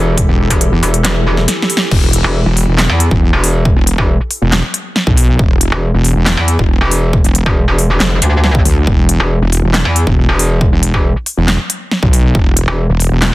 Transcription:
Already playing: E1 E3 E4 G4 A4
0.18 kick, closed hi-hat
0.29 E1
0.50 E1, kick, closed hi-hat
0.61 closed hi-hat
0.72 E1
0.83 E1, open hi-hat
0.94 closed hi-hat
1.05 snare, clap, closed hi-hat
1.37 snare
1.48 snare, closed hi-hat
1.62 snare
1.70 open hi-hat
1.77 snare
1.91 E1, kick, crash
2.13 closed hi-hat
2.24 E1
2.46 E1
2.57 open hi-hat
2.68 E1
2.78 snare, clap
2.90 E2
3.00 closed hi-hat
3.11 E1, kick
3.33 E1
3.44 open hi-hat
3.65 kick
3.76 E1
3.87 closed hi-hat
3.98 E1, kick
4.31 open hi-hat
4.42 E1
4.52 snare, clap
4.74 closed hi-hat
4.96 snare
5.07 B1, kick
5.17 open hi-hat
5.39 E1, kick
5.61 closed hi-hat
5.72 E1
5.94 E1
6.04 open hi-hat
6.16 E1
6.26 snare, clap
6.37 E2
6.48 closed hi-hat
6.59 E1, kick
6.81 E1
6.91 open hi-hat
7.13 kick
7.24 E1, closed hi-hat
7.35 closed hi-hat
7.46 E1, kick
7.68 E1
7.78 open hi-hat
8.00 F1, snare, clap
8.22 D2, closed hi-hat
8.44 snare
8.55 kick
8.65 D2, open hi-hat
8.87 E1, kick
9.09 closed hi-hat
9.20 E1
9.42 E1
9.52 open hi-hat
9.63 E1
9.74 snare, clap
9.85 E2
9.96 closed hi-hat
10.07 E1, kick
10.29 E1
10.39 open hi-hat
10.61 kick
10.72 E1
10.83 closed hi-hat
10.94 E1, kick
11.26 open hi-hat
11.37 E1
11.48 snare, clap
11.70 closed hi-hat
11.91 snare
12.03 B1, kick
12.13 open hi-hat
12.35 E1, kick
12.57 closed hi-hat
12.68 E1
12.90 E1
13.00 open hi-hat
13.11 E1
13.22 snare, clap

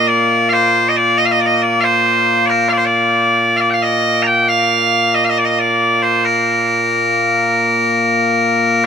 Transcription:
Already playing: A#2 A#3
0.08 D5
0.49 C5 F5
0.89 D#5
0.96 D5
1.18 D#5
1.25 F5
1.31 D#5
1.40 D5
1.46 D#5
1.54 D#5
1.62 D5
1.80 C5 F5
2.46 A#4 D5
2.69 D5 F5
2.78 C5
2.86 D5
3.57 D5 F5
3.70 F5 G5
3.82 D#5
4.23 G5 A#5
4.48 F5
5.14 D#5
5.25 F5
5.29 D#5
5.38 D5
5.45 D#5
5.49 D#5
5.59 D5
6.03 C5
6.25 A#4

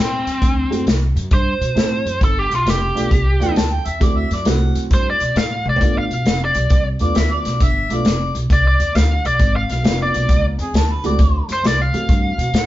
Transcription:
Already playing: A2
0.00 C4
0.26 F#2, closed hi-hat
0.42 D2, kick, closed hi-hat
0.70 F#2 A3 C4 E4 F#4, closed hi-hat
0.86 C2, snare, closed hi-hat
1.16 F#2, closed hi-hat
1.31 G2 C5, kick, closed hi-hat
1.61 B2, closed hi-hat
1.75 A2 A3 C4 E4 A4, snare, closed hi-hat
2.06 F#2, closed hi-hat
2.21 G1 A4, kick, closed hi-hat
2.39 G4
2.50 B1, closed hi-hat
2.55 F4
2.66 F1 G4, snare, closed hi-hat
2.95 B1 A3 B3 D4 F4, closed hi-hat
3.11 C2, kick, closed hi-hat
3.39 E2 A3 B3 D4 F4 G5, closed hi-hat
3.56 D2 A5, snare, closed hi-hat
3.73 G5
3.85 E2 E5, closed hi-hat
4.00 D2 A3 C4 E4 F#4 D5, kick, closed hi-hat
4.17 E5
4.31 F#2 D5, snare, closed hi-hat
4.45 C2 A3 C4 E4 F#4 F#5, snare, closed hi-hat
4.75 F#2, closed hi-hat
4.91 G2 C5, kick, snare, closed hi-hat
5.10 D5
5.20 B2, closed hi-hat
5.36 A2 F5, snare, closed hi-hat
5.65 A1, high tom
5.69 D5
5.76 floor tom
5.81 G1 A3 B3 D4 F4, kick, closed hi-hat
5.98 F5
6.10 B1, closed hi-hat
6.26 F1, snare, closed hi-hat
6.45 D5
6.55 B1, closed hi-hat
6.70 C2, kick, snare, closed hi-hat
6.99 E2 A3 B3 D4 F4 D5, closed hi-hat
7.15 D2 E5, snare, closed hi-hat
7.32 D5
7.45 B1, snare, closed hi-hat
7.60 G1 E5, kick, closed hi-hat
7.90 B1 A3 B3 D4 F4 D5, closed hi-hat
8.04 F1, snare, closed hi-hat
8.35 B1, closed hi-hat
8.50 C2 D5, kick, snare, closed hi-hat
8.67 D5
8.80 E2, closed hi-hat
8.95 D2 F5, snare, closed hi-hat
9.25 B1 D5, closed hi-hat
9.39 G#1, kick, closed hi-hat
9.56 F5
9.69 B1, snare, closed hi-hat
9.83 F1 A#3 B3 D4 F4, snare, closed hi-hat
10.03 D5
10.14 B1, closed hi-hat
10.29 C#2, kick, closed hi-hat
10.59 F2 G#4, closed hi-hat
10.73 D2 A4, snare, closed hi-hat
10.91 B4
11.04 C#2 A3 C4 E4 F#4 D5, closed hi-hat
11.19 D2, kick, closed hi-hat
11.48 F#2, snare, closed hi-hat
11.53 C5
11.63 C2, snare, closed hi-hat
11.68 D5
11.82 F5
11.93 F#2 E3 A3 C4 F#4, closed hi-hat
12.09 G2, kick, closed hi-hat
12.38 B2, closed hi-hat
12.53 A2, snare, closed hi-hat

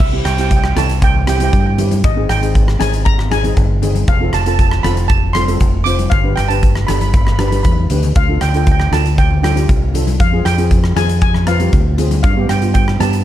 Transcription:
0.00 C2 E5, kick, crash
0.12 C4 E4 G4
0.25 C2 G5, cross-stick, closed hi-hat
0.33 G5
0.38 C4 E4 G4 G5, closed hi-hat
0.49 G5, kick, closed hi-hat
0.57 G5
0.64 G5, cross-stick
0.76 C2 C4 E4 A4 A5, cross-stick, closed hi-hat, low conga
0.89 closed hi-hat
1.02 G5, kick, closed hi-hat
1.14 low conga
1.26 C4 E4 G4 G5, cross-stick, closed hi-hat
1.37 C4 E4 G4 G5, closed hi-hat, high conga
1.44 G5
1.52 G2 G5, kick, closed hi-hat
1.60 G5
1.66 G5
1.77 C4 E4 G4, closed hi-hat, low conga
1.91 closed hi-hat, high conga
2.04 G#1 D#5, kick, closed hi-hat
2.16 C4 D#4 G#4
2.29 G#1 G5, cross-stick, closed hi-hat
2.41 C4 D#4 G#4, closed hi-hat
2.55 kick, closed hi-hat
2.68 cross-stick
2.79 G#1 C4 D#4 G#4 G#5, cross-stick, closed hi-hat, low conga
2.93 closed hi-hat
3.05 A#5, kick, closed hi-hat
3.18 cross-stick, low conga
3.31 C4 D#4 G#4 G#5, cross-stick, closed hi-hat, high conga
3.44 C4 D#4 G#4, closed hi-hat, high conga
3.57 G1, kick, closed hi-hat
3.82 C4 D#4 G#4, closed hi-hat, low conga
3.95 closed hi-hat, high conga
4.08 F1 F5, kick, closed hi-hat
4.20 C4 F4 A4
4.33 F1 A5, cross-stick, closed hi-hat
4.41 A5
4.46 C4 F4 A4 A5, closed hi-hat
4.55 A5
4.59 A5, kick, closed hi-hat
4.69 A5, cross-stick
4.83 F1 C4 F4 A4 B5, cross-stick, closed hi-hat, low conga
4.97 closed hi-hat
5.08 A5, kick, closed hi-hat
5.33 C4 F4 A4 C6, cross-stick, closed hi-hat, high conga
5.48 C4 F4 A4, closed hi-hat, high conga
5.60 F1, kick, closed hi-hat
5.84 C4 F4 C5 D6, closed hi-hat, low conga
5.98 closed hi-hat, high conga
6.10 G1 F5, kick, closed hi-hat
6.24 D4 G4 B4
6.36 G1 G5, cross-stick, closed hi-hat
6.48 D4 G4 B4 A5, closed hi-hat
6.63 kick, closed hi-hat
6.75 cross-stick
6.87 G1 D4 G4 A4 B5, cross-stick, closed hi-hat, low conga
6.93 B5
7.01 B5, closed hi-hat, high conga
7.09 B5
7.14 B5, kick, closed hi-hat
7.25 B5, cross-stick, low conga
7.32 B5
7.39 D4 G4 B4 B5, cross-stick, closed hi-hat, high conga
7.48 D4 B5, high conga
7.52 G4 B4, closed hi-hat
7.56 B5
7.63 E2 B5, kick, closed hi-hat, high conga
7.72 B5
7.78 high conga
7.90 D2 D4 G4 B4, closed hi-hat, low conga
8.03 closed hi-hat, low conga
8.15 D2 F5, kick, closed hi-hat
8.29 D4 F4 A4
8.41 D2 G5, cross-stick, closed hi-hat
8.49 G5
8.54 D4 F4 A4 G5, closed hi-hat
8.64 G5, kick, closed hi-hat
8.71 G5
8.80 G5, cross-stick
8.91 D2 D4 F4 A4 A5, cross-stick, closed hi-hat, low conga
9.06 closed hi-hat
9.18 G5, kick, closed hi-hat
9.31 low conga
9.42 D4 F4 A4 G5, cross-stick, closed hi-hat, high conga
9.56 D4 F4 G4, closed hi-hat, high conga
9.69 C2, kick, closed hi-hat
9.94 D4 F4 A4, closed hi-hat, low conga
10.07 closed hi-hat, high conga
10.20 F2 F5, kick, closed hi-hat
10.32 C4 F4 G#4
10.45 F2 G5, cross-stick, closed hi-hat
10.58 C4 F4 G#4, closed hi-hat
10.71 kick, closed hi-hat
10.84 cross-stick
10.96 F2 C4 F4 G#4 G#5, cross-stick, closed hi-hat, low conga
11.09 closed hi-hat
11.21 G#5, kick, closed hi-hat
11.34 cross-stick, low conga
11.47 C4 F4 B4 F5, cross-stick, closed hi-hat, high conga
11.60 C4 F4 G4, closed hi-hat, high conga
11.73 D2, kick, closed hi-hat
11.98 C4 F4 G#4, closed hi-hat, low conga
12.11 closed hi-hat, high conga
12.23 G2 F5, kick, closed hi-hat
12.36 B3 D4 G4
12.49 G2 G5, cross-stick, closed hi-hat
12.61 B3 D4 F4, closed hi-hat
12.74 G5, kick, closed hi-hat
12.88 cross-stick
12.99 G2 B3 D4 G4 A5, cross-stick, closed hi-hat, low conga
13.13 closed hi-hat

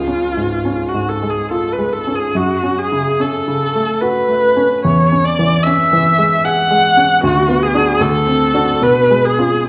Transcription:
Already playing: C#2 F4
0.08 C#4
0.37 G#2
0.65 C#4
0.88 F#4
0.94 G#2
1.09 A4
1.22 G#3
1.30 G#4
1.51 F4 A4
1.73 B4
1.79 G#3
1.93 A4
2.07 C#4
2.15 G#4
2.35 F#2 F#4
2.63 C#4
2.78 G#4
2.92 C#3
3.20 C#4 A4
3.48 C#3
3.75 A3
4.01 F#4 B4
4.28 A3
4.57 C#4
4.85 E2 C#5
5.12 C#4
5.24 D5
5.39 E3
5.63 C#4 E5
5.93 E3
6.18 G#3
6.45 G#4 F#5
6.71 G#3
6.97 C#4
7.23 D2 F#4
7.49 B3
7.63 G#4
7.75 D4 F#4
8.00 D2 A4
8.26 C4
8.54 D4 F#4
8.82 B2 B4
9.10 G#3
9.25 G#4
9.38 C#4 F4

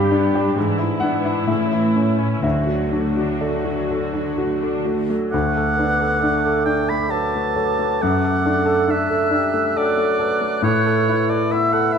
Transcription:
Already playing: G2 G3 D4 G4 B5
0.11 B3 D4
0.34 D4 G4
0.56 G#2 E3 E4
0.78 G#3 E4
1.00 B3 D4 F#5
1.25 D4 E4
1.47 A2 C#3 C#4 E5
1.72 E3 E4
1.95 A3 C#4
2.18 C#4 E4
2.42 D2 D3 F#3 D4 F#4 E5
2.66 F#3 F#4
2.92 A3 D4
3.17 D4 F#4
3.41 A3 A4 D5
3.65 F#3 F#4
3.89 D3 A4
4.13 F#3 D4
4.38 A3 F#4
4.62 A3 D4
4.85 A3 F#4
5.09 F#3 A3
5.31 D2 A3 A4 F#5 D6
5.56 A4
5.77 B3 D4
6.01 A4
6.20 A3 D4
6.46 A4
6.65 D4 G5
6.89 A3 B5
7.09 F#3 A4 B4 A5 D6
7.35 A3
7.56 F#3 A4
7.79 A3
8.01 F#2 A3 A4 F#5
8.24 A4
8.45 A3 D4
8.66 A4
8.88 A3 D4 E5 F#6
9.10 A4
9.31 G3 D4
9.54 A3
9.76 F#3 A4 D5 F#6
9.97 A3
10.19 A4 B4
10.41 A3
10.62 A2 C#5
10.66 A3
10.86 A4
11.09 E4
11.29 A4 D5
11.51 B3 E4 E5 E6
11.73 A4 F#5
11.92 E4 E5

